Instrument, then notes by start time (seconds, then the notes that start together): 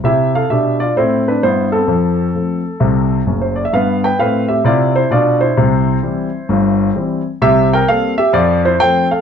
grand piano
0.04 C3 E4 G4 E5
0.35 A4 F5
0.50 B2 D4 G4 E5
0.80 F4 D5
0.96 A2 C4 E4 C5
1.28 D4 B4
1.43 G2 B3 E4 C5
1.72 C4 A4
1.88 F2 F3
2.35 F3 A3 C4
2.80 C2 C3
3.27 F#1 F#2
3.41 C5
3.56 D5
3.65 E5
3.73 G2 B3 B4 F5
4.04 B4 G5
4.19 A2 C4 B4 F5
4.48 G4 E5
4.64 C3 E4 F4 D5
4.96 E4 C5
5.11 B2 D4 F4 D5
5.41 E4 C5
5.57 C2 C3
6.03 E3 G3 C4
6.49 G1 G2
6.95 E3 G3 C4
7.42 C2 C3 G4 E5
7.73 A#4 G5
7.88 G3 A#3 C4 A4 F5
8.18 G4 E5
8.33 F2 F3 F4 D5
8.65 E4 C5
8.80 F3 A3 C4 C5 G5
9.11 A4 F5